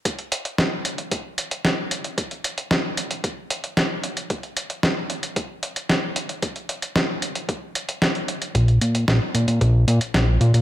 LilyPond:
<<
  \new Staff \with { instrumentName = "Analog synth bass" } { \clef bass \time 4/4 \key c \dorian \tempo 4 = 113 r1 | r1 | r1 | r1 |
bes,,8 bes,8 bes,,16 r16 bes,16 bes,16 bes,,8 bes,16 r16 bes,,8 bes,16 bes,16 | }
  \new DrumStaff \with { instrumentName = "Drums" } \drummode { \time 4/4 <hh bd>16 hh16 hh16 hh16 <hh bd sn>8 hh16 hh16 <hh bd>8 hh16 hh16 <hh bd sn>8 hh16 hh16 | <hh bd>16 hh16 hh16 hh16 <hh bd sn>8 hh16 hh16 <hh bd>8 hh16 hh16 <hh bd sn>8 hh16 hh16 | <hh bd>16 hh16 hh16 hh16 <hh bd sn>8 hh16 hh16 <hh bd>8 hh16 hh16 <hh bd sn>8 hh16 hh16 | <hh bd>16 hh16 hh16 hh16 <hh bd sn>8 hh16 hh16 <hh bd>8 hh16 hh16 <hh bd sn>16 hh16 hh16 hh16 |
<hh bd>16 hh16 hh16 hh16 <hh bd sn>8 hh16 hh16 <hh bd>8 hh16 hh16 <hh bd sn>8 hh16 hh16 | }
>>